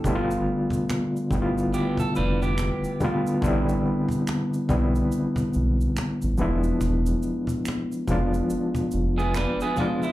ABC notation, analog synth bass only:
X:1
M:4/4
L:1/16
Q:"Swing 16ths" 1/4=71
K:Am
V:1 name="Analog synth bass" clef=bass
G,,,2 z4 G,,,2 z2 F,,,3 z3 | A,,,2 z4 B,,,2 z2 B,,,2 z A,,, E,,,2 | E,,,2 z4 F,,,2 z2 F,,,3 z3 |]